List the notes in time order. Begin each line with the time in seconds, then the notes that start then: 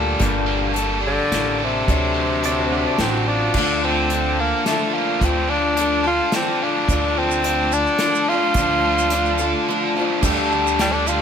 Already playing: D2 A#2 G3 A3 D4 G4 A4
0.19 G1 G2 D3 G3 A#3 D4 G4 A4, kick, closed hi-hat
0.46 A#3
0.73 G3 A#3 D4 A4, closed hi-hat
0.77 A4
1.01 D4
1.07 D3
1.31 A1 G3 A#3, snare, closed hi-hat
1.35 A#3 D4 A4
1.59 A4
1.64 C3
1.88 D2 D3 F#3 C4 D4 F#4 A4, kick, closed hi-hat
2.14 C4
2.43 F#3 C4 D4 A4 D5, closed hi-hat
2.60 F#4
2.72 D4 F#4
2.87 D5
2.98 A1 F#3 C4 D4 F#4, snare, closed hi-hat
3.04 A4
3.28 D4 F4 A4
3.54 D2 D3 F3 A3 D4 F4 A4, kick, crash
3.58 D4 F4 A4
3.85 D3 C4
4.10 F3 D4 F4, closed hi-hat
4.15 A4
4.40 A#3 A4
4.66 F3 A3 D4 F4, snare, closed hi-hat
4.71 A4
4.94 A#3 F4
5.21 D2 D3 F3 C4 D4 F4 A4, kick, closed hi-hat
5.48 D3 D4
5.77 F3 D4 F4 A4, closed hi-hat
6.04 D4 F4 A4
6.32 F3 C4 D4 F4 A4, snare, closed hi-hat
6.62 D4 F4
6.88 D2 D3 F3 A3 D4 F4 A4, kick, closed hi-hat, shaker
7.17 D3 C4
7.31 shaker
7.42 F3 D4 F4 A4, closed hi-hat
7.72 D4 A4, shaker
7.87 shaker
7.99 F3, snare, closed hi-hat
8.03 D4 F4 A4
8.15 shaker
8.28 F4 A4
8.33 D4
8.54 D2 D3, kick, closed hi-hat, shaker
8.59 F3 D4 F4 A4
8.84 D3
8.98 shaker
9.10 F3, closed hi-hat, shaker
9.15 D4 F4 A4
9.25 shaker
9.38 F4 A4, shaker
9.43 D4
9.69 F3 D4 F4 A4
9.95 D4 F4 A4 C5
10.00 D4 F4
10.21 D2 D3 G3 A3 D4 G4 A4, kick, crash, shaker
10.25 A4
10.38 shaker
10.51 D3 G3 D4 A4, shaker
10.67 shaker
10.79 D3 G3 D4 G4 A4, snare, closed hi-hat, shaker
10.93 G3 D4 A4
11.07 D3 G3 D4 F4 G4 A4, shaker